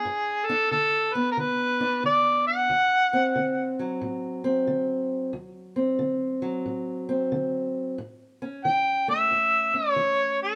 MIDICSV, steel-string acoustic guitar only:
0, 0, Header, 1, 2, 480
1, 0, Start_track
1, 0, Tempo, 660066
1, 43, Time_signature, 4, 2, 24, 8
1, 7673, End_track
2, 0, Start_track
2, 0, Title_t, "Steel-string acoustic guitar"
2, 0, Program_c, 0, 25
2, 0, Note_on_c, 0, 62, 56
2, 37, Note_on_c, 0, 43, 71
2, 356, Note_off_c, 0, 62, 0
2, 359, Note_on_c, 0, 62, 64
2, 486, Note_off_c, 0, 43, 0
2, 519, Note_on_c, 0, 50, 60
2, 838, Note_on_c, 0, 59, 57
2, 968, Note_off_c, 0, 50, 0
2, 998, Note_on_c, 0, 50, 57
2, 1309, Note_off_c, 0, 62, 0
2, 1312, Note_on_c, 0, 62, 63
2, 1447, Note_off_c, 0, 50, 0
2, 1480, Note_on_c, 0, 50, 65
2, 1928, Note_off_c, 0, 50, 0
2, 1947, Note_off_c, 0, 59, 0
2, 1959, Note_on_c, 0, 38, 69
2, 2275, Note_off_c, 0, 62, 0
2, 2277, Note_on_c, 0, 60, 59
2, 2408, Note_off_c, 0, 38, 0
2, 2440, Note_on_c, 0, 50, 64
2, 2759, Note_on_c, 0, 54, 53
2, 2889, Note_off_c, 0, 50, 0
2, 2919, Note_on_c, 0, 45, 65
2, 3221, Note_off_c, 0, 60, 0
2, 3230, Note_on_c, 0, 60, 59
2, 3369, Note_off_c, 0, 45, 0
2, 3399, Note_on_c, 0, 50, 66
2, 3848, Note_off_c, 0, 50, 0
2, 3863, Note_off_c, 0, 60, 0
2, 3876, Note_on_c, 0, 38, 75
2, 4189, Note_on_c, 0, 60, 53
2, 4327, Note_off_c, 0, 38, 0
2, 4354, Note_on_c, 0, 50, 63
2, 4660, Note_off_c, 0, 54, 0
2, 4668, Note_on_c, 0, 54, 54
2, 4806, Note_off_c, 0, 50, 0
2, 4840, Note_on_c, 0, 45, 56
2, 5146, Note_off_c, 0, 60, 0
2, 5155, Note_on_c, 0, 60, 55
2, 5288, Note_off_c, 0, 45, 0
2, 5322, Note_on_c, 0, 50, 62
2, 5769, Note_off_c, 0, 50, 0
2, 5785, Note_off_c, 0, 60, 0
2, 5802, Note_off_c, 0, 54, 0
2, 5805, Note_on_c, 0, 45, 72
2, 6122, Note_on_c, 0, 61, 52
2, 6250, Note_off_c, 0, 45, 0
2, 6290, Note_on_c, 0, 52, 61
2, 6604, Note_on_c, 0, 57, 55
2, 6732, Note_off_c, 0, 52, 0
2, 6772, Note_on_c, 0, 40, 59
2, 7076, Note_off_c, 0, 61, 0
2, 7083, Note_on_c, 0, 61, 56
2, 7212, Note_off_c, 0, 40, 0
2, 7244, Note_on_c, 0, 52, 63
2, 7673, Note_off_c, 0, 52, 0
2, 7673, Note_off_c, 0, 57, 0
2, 7673, Note_off_c, 0, 61, 0
2, 7673, End_track
0, 0, End_of_file